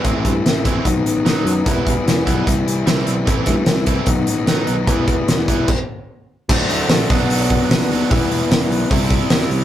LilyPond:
<<
  \new Staff \with { instrumentName = "Overdriven electric guitar" } { \time 4/4 \key e \minor \tempo 4 = 149 <e c' e'>8 r4 <e c' e'>8 r4 <fis b dis'>8 r8 | <g b e'>8 r4 <g b e'>8 r4 <g c' e'>8 r8 | <e c' e'>8 r4 <e c' e'>8 r4 <fis b dis'>8 r8 | <g b e'>8 r4 <g b e'>8 r2 |
<a c' fis'>4. <fis b d' fis'>2 <fis b d' fis'>8 | <g b e' g'>2 <c' e' g'>2 | }
  \new Staff \with { instrumentName = "Distorted electric guitar" } { \time 4/4 \key e \minor <a, e a c' e'>8 <a c' e'>8 <e a c' e'>8 <a c' e'>8 <b, dis fis b dis'>8 <fis b dis'>8 <dis fis b dis'>4 | <e g b e'>8 <g b e'>8 <e g b e'>8 <g b e'>8 <c e g c' e'>8 <g c' e'>8 <e g c' e'>4 | <a, e a c' e'>8 <a c' e'>8 <e a c' e'>8 <a c' e'>8 <b, dis fis b dis'>8 <fis b dis'>8 <dis fis b dis'>4 | <e g b e'>8 <g b e'>8 <e g b e'>8 <g b e'>8 r2 |
<d fis a d'>4. <b, fis b d'>2~ <b, fis b d'>8 | <e g b e'>2 <c g c' e'>2 | }
  \new Staff \with { instrumentName = "Picked electric bass" } { \clef bass \time 4/4 \key e \minor a,,8 g,8 a,,4 b,,8 a,,8 a,8 fis,8 | e,,4 e,,8 b,,8 c,8 c,8 c,8 b,,8 | a,,8 g,8 c,4 b,,8 a,,8 a,8 b,,8 | e,,4 e,,8 e,,8 r2 |
d,8 d,8 ais,,8 b,,8 b,,4 b,,8 dis,8 | e,,8 e,,8 e,,8 b,,8 c,4 e,8 c,8 | }
  \new DrumStaff \with { instrumentName = "Drums" } \drummode { \time 4/4 <hh bd>8 <hh bd>8 <hh sn>8 <hh bd>8 <hh bd>8 hh8 <hh sn>8 hh8 | <hh bd>8 <hh bd>8 <hh sn>8 <hh bd>8 <hh bd>8 hh8 <hh sn>8 hh8 | <hh bd>8 <hh bd sn>8 <hh sn>8 <hh bd>8 <hh bd>8 hh8 <hh sn>8 hh8 | <hh bd>8 <hh bd>8 <hh sn>8 <hh bd>8 <cymc bd>4 r4 |
<cymc bd>8 hho8 <hho sn>8 <hho bd>8 hho8 <hho bd>8 <hho sn>16 sn16 hho8 | <hho bd>8 hho8 <hho sn>8 hho8 <hho bd>8 <hho bd>8 <hho sn>16 sn16 hho8 | }
>>